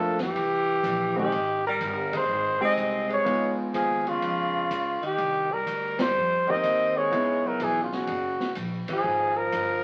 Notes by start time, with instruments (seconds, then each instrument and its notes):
Already playing: upright bass F2, tenor saxophone F3, grand piano A3 A#3 D4 F4, trumpet A4
0.19 tenor saxophone E3, trumpet G4, snare, ride
0.35 upright bass C2, kick, ride
0.83 upright bass A#1, kick, hi-hat pedal, ride
1.15 tenor saxophone D#3, grand piano G#3 C4 D#4 G4, trumpet G4, kick
1.32 upright bass G#1, ride
1.67 tenor saxophone G3, trumpet A#4
1.80 upright bass G1, kick, hi-hat pedal, ride
2.13 tenor saxophone G#3, kick, ride
2.17 trumpet C5
2.29 upright bass G#1
2.60 grand piano G#3 C4 D#4 G4, tenor saxophone C4, muted upright bass stroke
2.65 trumpet D#5
2.77 upright bass C2, kick, hi-hat pedal, ride
3.08 tenor saxophone G#3, ride
3.13 trumpet C#5
3.24 upright bass C#2, grand piano G#3 B3 D#4 F4, kick, ride
3.59 muted upright bass stroke
3.74 upright bass D#2, tenor saxophone F3, trumpet G#4, kick, hi-hat pedal, ride
4.07 tenor saxophone C#3, trumpet F4, ride
4.22 upright bass F2, kick, ride
4.71 upright bass C#2, kick, hi-hat pedal, ride
5.01 tenor saxophone D#3, muted upright bass stroke, ride
5.06 trumpet G4
5.18 upright bass C2, kick, ride
5.51 tenor saxophone G3, trumpet A#4
5.67 upright bass D2, kick, hi-hat pedal, ride
5.99 tenor saxophone G3, trumpet C5, snare, ride
6.16 upright bass F2
6.48 grand piano A#3 C4 D#4 G4, tenor saxophone C4, trumpet D#5, kick
6.63 upright bass D#2, kick, hi-hat pedal, ride
6.97 tenor saxophone G#3, trumpet C#5
7.11 upright bass C#2, grand piano B3 D#4 E4 G#4, kick, ride
7.46 tenor saxophone F#3, trumpet A#4
7.60 upright bass B1, tenor saxophone E3, kick, hi-hat pedal, ride
7.64 trumpet G#4
7.82 tenor saxophone C#3, trumpet F4
7.91 tenor saxophone C#3, trumpet F#4, snare
8.07 upright bass F#1, kick, ride
8.40 muted upright bass stroke, snare
8.55 upright bass A#1, kick, hi-hat pedal, ride
8.88 tenor saxophone F3, kick, ride
8.93 trumpet G#4
9.04 upright bass G#1
9.35 tenor saxophone F3, trumpet A#4
9.52 upright bass G1, kick, hi-hat pedal, ride